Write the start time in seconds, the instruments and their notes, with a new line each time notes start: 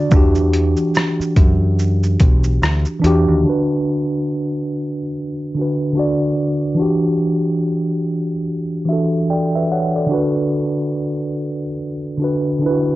Already playing: tine electric piano D3 D4 F#4 D5
0.09 picked electric bass E2, tine electric piano E3 D4, kick, shaker
0.14 tine electric piano F#4 G4
0.35 shaker
0.53 closed hi-hat, shaker
0.77 shaker
0.95 cross-stick, shaker
1.20 muted picked electric bass stroke, shaker
1.36 picked electric bass F#2, kick, closed hi-hat, shaker
1.79 shaker
2.03 shaker
2.20 picked electric bass B1, kick, closed hi-hat, shaker
2.44 shaker
2.62 picked electric bass D2, cross-stick, shaker
2.85 shaker
3.00 tine electric piano E3 D4
3.04 picked electric bass E2, tine electric piano F#4 G4, closed hi-hat, shaker
3.28 picked electric bass D#2
3.42 tine electric piano D3 D4
3.47 tine electric piano F#4 B4
5.54 tine electric piano D3 D4
5.59 tine electric piano F#4 B4
5.93 tine electric piano D3 D4
5.97 tine electric piano F#4 D5
6.75 tine electric piano E3 D4
6.79 tine electric piano F#4 G4
8.85 tine electric piano E3 D4 E5
8.90 tine electric piano F#4 A4
9.30 tine electric piano A4 D5 G5
9.55 tine electric piano B4 E5
9.72 tine electric piano C#5 F#5
9.96 tine electric piano A4 D5
10.06 tine electric piano D3 D4
10.11 tine electric piano F#4 B4
12.17 tine electric piano D3 D4
12.22 tine electric piano F#4 B4
12.59 tine electric piano D3 D4
12.64 tine electric piano E4 B4
12.70 tine electric piano F#4